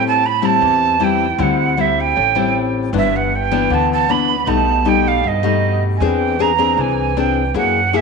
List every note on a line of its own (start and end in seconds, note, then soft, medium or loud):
0.00 0.57 A2 medium
0.00 0.59 A2 medium
0.00 0.23 G3 medium
0.00 0.23 C4 medium
0.00 0.23 E4 medium
0.07 0.27 A5 loud
0.25 0.46 B5 loud
0.42 0.97 G3 medium
0.42 0.97 C4 medium
0.42 0.97 E4 medium
0.42 1.04 A5 loud
0.61 1.34 E2 medium
0.61 1.37 E3 medium
1.00 1.26 G3 medium
1.00 1.26 C4 medium
1.00 1.26 E4 medium
1.00 1.43 G5 loud
1.38 2.12 D2 loud
1.38 2.14 D3 medium
1.38 1.74 G3 medium
1.38 1.74 C4 medium
1.38 1.75 E4 medium
1.38 1.81 F#5 loud
1.77 2.16 G3 medium
1.77 2.16 C4 medium
1.77 2.16 E4 medium
1.77 2.01 E5 medium
2.00 2.75 G5 loud
2.16 2.89 A1 medium
2.16 2.91 A2 medium
2.35 2.90 G3 medium
2.35 2.90 C4 medium
2.35 2.90 E4 medium
2.93 3.66 G1 medium
2.93 3.68 G2 medium
2.93 3.31 E3 medium
2.93 3.32 B3 medium
2.93 3.32 D4 medium
2.97 3.17 E5 medium
3.15 3.36 F#5 medium
3.35 3.75 G5 loud
3.51 4.06 E3 medium
3.51 4.06 B3 medium
3.51 4.06 D4 medium
3.70 4.43 D2 medium
3.70 4.45 D3 medium
3.70 3.91 A5 loud
3.92 4.12 A5 medium
4.09 4.35 E3 medium
4.09 4.35 B3 medium
4.09 4.35 D4 medium
4.09 4.49 B5 loud
4.46 5.20 B1 medium
4.46 5.22 B2 medium
4.46 4.82 G3 medium
4.46 4.82 A3 medium
4.46 4.83 D#4 medium
4.46 4.89 A5 loud
4.85 5.23 G3 medium
4.85 5.24 A3 medium
4.85 5.24 D#4 medium
4.85 5.09 G5 medium
5.07 5.28 F5 medium
5.23 5.97 G2 medium
5.23 5.99 B2 medium
5.23 5.83 D#5 medium
5.43 5.98 G3 medium
5.43 5.98 A3 medium
5.43 5.98 D#4 medium
5.96 6.74 E2 loud
5.96 6.05 G#5 medium
6.01 6.76 E3 medium
6.01 6.36 C4 medium
6.01 6.36 D4 medium
6.01 6.37 G#4 medium
6.01 6.42 G5 loud
6.39 6.51 C4 medium
6.39 6.51 D4 medium
6.39 6.51 G#4 medium
6.39 6.81 A#5 medium
6.58 7.13 C4 medium
6.58 7.13 D4 medium
6.58 7.14 G#4 medium
6.77 7.50 C2 medium
6.77 7.53 E3 medium
6.77 7.21 G#5 medium
7.17 7.42 C4 medium
7.17 7.42 D4 medium
7.17 7.43 G#4 medium
7.17 7.56 G5 medium
7.54 8.01 F#2 loud
7.54 8.01 F#3 medium
7.54 7.79 A#3 medium
7.54 7.80 E4 medium
7.54 7.80 G#4 medium
7.54 7.97 F#5 medium
7.93 8.01 A#3 medium
7.93 8.01 E4 medium
7.93 8.01 G#4 medium
7.93 8.01 E5 medium